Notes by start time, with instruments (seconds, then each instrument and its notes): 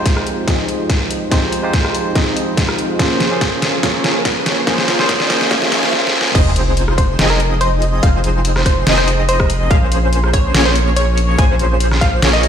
Already playing: sub bass F1, supersaw synth F3 C4 D#4 G#4 C5, tine electric piano G#3 D#4 F4 G4 C5 G5, riser
0.06 kick, snare, closed hi-hat
0.17 cross-stick
0.27 closed hi-hat
0.48 sub bass F1, supersaw synth F3 C4 D#4 G#4 D#5, kick, snare, closed hi-hat
0.69 closed hi-hat
0.90 kick, snare, closed hi-hat
1.11 closed hi-hat
1.30 sub bass F1, supersaw synth F3 C4 D#4 G#4 C5, tine electric piano G#3 D#4 F4 G4 C5, kick, snare, closed hi-hat
1.53 closed hi-hat
1.62 tine electric piano G#3 D#4 F4 G4 C5
1.74 kick, snare, closed hi-hat
1.85 cross-stick
1.95 closed hi-hat
2.15 sub bass F1, supersaw synth F3 C4 D#4 G#4 D#5, kick, snare, closed hi-hat
2.37 closed hi-hat
2.57 kick, snare, closed hi-hat
2.69 cross-stick
2.79 closed hi-hat
2.98 sub bass A#1, supersaw synth F3 A#3 C#4 G#4 C5, tine electric piano A#3 C#4 F4 G#4 C5, kick, snare, closed hi-hat
3.20 snare, closed hi-hat
3.29 tine electric piano A#3 C#4 F4 G#4
3.33 tine electric piano C6
3.41 kick, snare, closed hi-hat
3.62 snare, closed hi-hat
3.83 sub bass A#1, supersaw synth F3 A#3 C#4 G#4 C#5, kick, snare, closed hi-hat
4.04 snare, closed hi-hat
4.25 kick, snare, closed hi-hat
4.46 snare, closed hi-hat
4.66 supersaw synth F3 A#3 C#4 G#4 C5, tine electric piano A#3 C#4 F4 G#4 C5, kick, snare, closed hi-hat
4.78 snare
4.88 snare, closed hi-hat
4.98 tine electric piano A#3 C#4 F4 G#4 C5, snare
5.09 kick, snare, closed hi-hat
5.20 snare
5.30 snare, closed hi-hat
5.41 snare
5.51 sub bass A#1, supersaw synth F3 A#3 C#4 G#4 C#5, kick, snare, closed hi-hat
5.62 snare
5.72 snare, closed hi-hat
5.83 snare
5.93 snare
6.07 snare
6.21 snare
6.35 sub bass F1, supersaw synth F3 C4 D#4 G#4 C5, digital synth lead C5, synth pluck D#5, kick, closed hi-hat, crash, sub drop
6.56 closed hi-hat
6.77 closed hi-hat
6.88 cross-stick
6.98 synth pluck C5, kick, closed hi-hat
7.19 sub bass F1, supersaw synth F3 C4 D#4 G#4 D#5, digital synth lead D#5, snare, closed hi-hat
7.30 synth pluck A#4
7.40 closed hi-hat
7.61 synth pluck C5, closed hi-hat
7.82 closed hi-hat
8.03 sub bass F1, supersaw synth F3 C4 D#4 G#4 C5, digital synth lead C5, synth pluck F5, kick, closed hi-hat
8.24 closed hi-hat
8.45 closed hi-hat
8.56 cross-stick, snare
8.66 synth pluck C5, kick, closed hi-hat
8.87 sub bass F1, supersaw synth F3 C4 D#4 G#4 D#5, digital synth lead D#5, snare, closed hi-hat
8.98 synth pluck C5
9.08 closed hi-hat
9.29 synth pluck C5, closed hi-hat
9.40 kick, cross-stick
9.50 closed hi-hat
9.71 sub bass A#1, supersaw synth F3 A#3 C#4 G#4 C5, digital synth lead C5, synth pluck F5, kick, closed hi-hat
9.92 closed hi-hat
10.13 closed hi-hat
10.24 cross-stick
10.33 synth pluck C#5, kick, closed hi-hat
10.54 sub bass A#1, supersaw synth F3 A#3 C#4 G#4 C#5, digital synth lead C#5, snare, closed hi-hat
10.65 synth pluck C5
10.76 closed hi-hat
10.96 synth pluck C#5, closed hi-hat
11.18 closed hi-hat
11.38 sub bass A#1, supersaw synth F3 A#3 C#4 G#4 C5, digital synth lead C5, synth pluck G#5, kick, closed hi-hat
11.59 closed hi-hat
11.80 closed hi-hat
11.91 cross-stick, snare
12.01 synth pluck F5, kick, closed hi-hat
12.22 sub bass A#1, supersaw synth F3 A#3 C#4 G#4 C#5, digital synth lead C#5, snare, closed hi-hat
12.33 synth pluck D#5
12.43 closed hi-hat